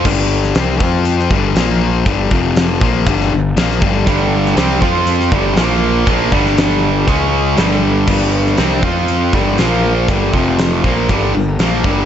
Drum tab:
CC |x---------------|----------------|----------------|----------------|
HH |----x---x---x---|x---x---x---x---|x---x---x---x---|x---x---x---x---|
SD |---oo----o--o---|----o----o--oo--|---oo----o--o---|---oo-------oo--|
BD |o-----o---o-----|o-o---o-o-----o-|o-----o---o-----|o-o-----o-------|

CC |x---------------|----------------|
HH |----x---x---x---|x---x---x---x---|
SD |---oo-------o---|----o-------o---|
BD |o-----o---o-----|o-o---o-o-----o-|